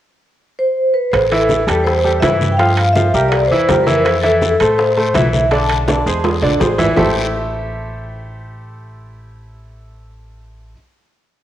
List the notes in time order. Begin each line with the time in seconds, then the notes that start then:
0.59 C5
0.94 B4
1.12 A1 C5, high bongo, high conga, high timbale, long guiro
1.30 E3 E4 A4 E5, high bongo, high conga, high timbale
1.49 high bongo, high conga, low timbale, short guiro
1.67 E2 G3 G4 A4, high bongo, high conga, high timbale, short guiro
1.84 C5, high bongo, high conga, long guiro
2.04 G3 G4 A4, high conga
2.20 G2 E3 E4 E5, high bongo, low bongo, high conga, high timbale, low timbale, short guiro
2.41 high bongo, high conga, short guiro
2.52 G5
2.57 F3 F4 F5, high bongo, high conga, high timbale, long guiro
2.77 high bongo, high conga, high timbale
2.93 F3 F4 E5 F5, high bongo, high conga, low timbale, short guiro
3.14 C2 G3 G4 A#4, high bongo, high conga, short guiro
3.29 D5, high bongo, high conga, high timbale, long guiro
3.47 E2 C5, high conga
3.51 E3 E4 E5
3.69 F2 G3 G4 A#4, high bongo, low bongo, high conga, high timbale, low timbale, short guiro
3.84 E3 E4 A#4 E5, high bongo, high conga, short guiro
4.02 C5, high bongo, high conga, high timbale, long guiro
4.21 E3 E4 A4 E5, high bongo, high conga, high timbale
4.42 high bongo, high conga, low timbale, short guiro
4.60 A2 A3 A4 C5, high bongo, high conga, high timbale, short guiro
4.78 C5, high bongo, high conga, long guiro
4.97 A3 A4 C5, high conga
5.14 B1 E3 E4 E5, high bongo, low bongo, high conga, high timbale, low timbale, short guiro
5.33 high bongo, high conga, short guiro
5.51 D3 D4 D5 A5, high bongo, high conga, high timbale, long guiro
5.69 high bongo, high conga, high timbale
5.88 D3 D4 D5, high bongo, high conga, high timbale, short guiro
6.06 E2 G#3 G#4 C5, high bongo, high conga, short guiro
6.24 high bongo, high conga, low timbale, long guiro
6.41 A#1 D3 D4 D5, high conga, low timbale
6.59 A1 G#3 G#4 C5, high bongo, low bongo, high conga, low timbale, short guiro
6.78 E3 E4 E5, high bongo, low conga, low timbale, short guiro
6.96 A1 A3 E4 G4 A4 C5 E5, low bongo, low conga, low timbale, long guiro